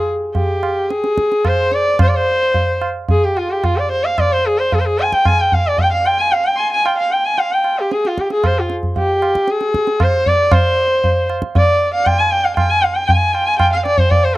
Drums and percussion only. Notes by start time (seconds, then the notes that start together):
0.35 tabla tin, tabla ge
0.63 tabla na
0.90 tabla te
1.04 tabla te
1.18 tabla ke
1.32 tabla te
1.45 tabla na, tabla ge
1.71 tabla te
1.99 tabla na, tabla ge
2.54 tabla tin, tabla ge
2.82 tabla na
3.09 tabla tin, tabla ge
3.37 tabla na
3.64 tabla na, tabla ge
4.18 tabla na, tabla ge
4.72 tabla tin, tabla ge
4.99 tabla na
5.12 tabla ke
5.25 tabla na, tabla ge
5.52 tabla ge
5.78 tabla tin, tabla ge
6.06 tabla na
6.32 tabla tin
6.86 tabla na
7.38 tabla tin
7.64 tabla na
7.91 tabla te
8.05 tabla te
8.18 tabla ke
8.30 tabla te
8.44 tabla na, tabla ge
8.70 tabla te
8.83 tabla ge
8.96 tabla tin, tabla ge
9.22 tabla na
9.35 tabla ke
9.47 tabla te
9.61 tabla te
9.74 tabla ke
9.87 tabla te
10.00 tabla na, tabla ge
10.26 tabla ge
10.52 tabla na, tabla ge
11.04 tabla tin, tabla ge
11.30 tabla na
11.42 tabla ke
11.55 tabla tin, tabla ge
12.06 tabla na, tabla ge
12.57 tabla na, tabla ge
13.09 tabla tin, tabla ge
13.34 tabla na
13.60 tabla na, tabla ge
13.86 tabla te
13.98 tabla ge
14.11 tabla tin, tabla ge